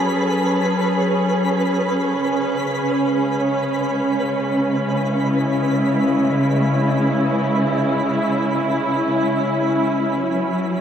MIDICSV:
0, 0, Header, 1, 3, 480
1, 0, Start_track
1, 0, Tempo, 500000
1, 10377, End_track
2, 0, Start_track
2, 0, Title_t, "Synth texture"
2, 0, Program_c, 0, 99
2, 0, Note_on_c, 0, 71, 78
2, 0, Note_on_c, 0, 83, 81
2, 9834, Note_off_c, 0, 71, 0
2, 9844, Note_off_c, 0, 83, 0
2, 10377, End_track
3, 0, Start_track
3, 0, Title_t, "String section"
3, 0, Program_c, 1, 48
3, 0, Note_on_c, 1, 54, 62
3, 0, Note_on_c, 1, 61, 67
3, 0, Note_on_c, 1, 68, 57
3, 0, Note_on_c, 1, 69, 66
3, 2133, Note_on_c, 1, 49, 70
3, 2137, Note_off_c, 1, 54, 0
3, 2144, Note_off_c, 1, 69, 0
3, 2882, Note_on_c, 1, 56, 57
3, 3930, Note_off_c, 1, 68, 0
3, 4775, Note_on_c, 1, 64, 70
3, 9804, Note_on_c, 1, 54, 85
3, 9816, Note_off_c, 1, 49, 0
3, 9817, Note_off_c, 1, 56, 0
3, 10377, Note_off_c, 1, 54, 0
3, 10377, Note_off_c, 1, 61, 0
3, 10377, Note_off_c, 1, 64, 0
3, 10377, End_track
0, 0, End_of_file